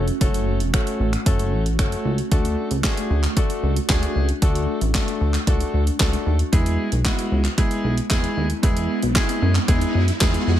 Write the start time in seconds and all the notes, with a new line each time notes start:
Already playing: F1 A3 C#4 F#4
0.08 closed hi-hat
0.21 F#1 A3 C#4 F#4 A4, kick, closed hi-hat
0.34 closed hi-hat
0.60 E1, closed hi-hat
0.73 A3 C#4 F#4 A4, finger snap, kick, closed hi-hat
0.87 closed hi-hat
1.00 A1
1.13 finger snap, closed hi-hat
1.26 F#1 A3 C#4 F#4 A4, kick, closed hi-hat
1.39 closed hi-hat
1.52 A1
1.66 closed hi-hat
1.79 F#1 A3 C#4 F#4 A4, finger snap, kick, closed hi-hat
1.92 closed hi-hat
2.05 C#2
2.18 closed hi-hat
2.31 D2 A3 D4 F#4 A4, kick, closed hi-hat
2.45 closed hi-hat
2.71 C#2, closed hi-hat
2.84 A3 D4 F#4 G#4, kick, snare, clap, closed hi-hat
2.97 closed hi-hat
3.10 D2
3.23 clap, closed hi-hat
3.37 A3 D4 F#4 A4, kick, closed hi-hat
3.50 closed hi-hat
3.63 C#2
3.76 closed hi-hat
3.89 D2 A3 D4 F#4 G#4, kick, snare, clap, closed hi-hat
4.03 closed hi-hat
4.16 C#2
4.29 closed hi-hat
4.42 D2 A3 D4 F#4 A4, kick, closed hi-hat
4.55 closed hi-hat
4.81 A1, closed hi-hat
4.94 A3 D4 F#4 A4, kick, snare, clap, closed hi-hat
5.08 closed hi-hat
5.21 D2
5.34 clap, closed hi-hat
5.47 C#2 A3 D4 F#4 A4, kick, closed hi-hat
5.60 closed hi-hat
5.74 D2
5.87 closed hi-hat
6.00 C#2 A3 D4 F#4 A4, kick, snare, clap, closed hi-hat
6.13 closed hi-hat
6.26 D#2
6.39 closed hi-hat
6.52 E2 G#3 B3 E4 G#4, kick, closed hi-hat, riser
6.66 closed hi-hat
6.92 B1, closed hi-hat
7.05 G#3 B3 E4 F#4, kick, snare, clap, closed hi-hat
7.19 closed hi-hat
7.32 C#2
7.45 clap, closed hi-hat
7.58 G#3 B3 E4 G#4, kick, closed hi-hat
7.71 closed hi-hat
7.84 B1
7.98 closed hi-hat
8.10 E2 G#3 B3 E4 G#4, kick, snare, clap, closed hi-hat
8.24 closed hi-hat
8.37 D#2
8.50 closed hi-hat
8.63 E2 G#3 B3 E4 G#4, kick, closed hi-hat
8.77 closed hi-hat
9.03 B1, closed hi-hat
9.15 G#3 B3 E4 G#4, kick, snare, clap, closed hi-hat
9.29 closed hi-hat
9.42 F#2
9.55 clap, closed hi-hat
9.68 E2 G#3 B3 E4 G#4, kick, closed hi-hat
9.81 closed hi-hat
9.95 F#2
10.08 closed hi-hat
10.21 E2 G#3 B3 E4 G#4, kick, snare, clap, closed hi-hat
10.34 closed hi-hat
10.47 F2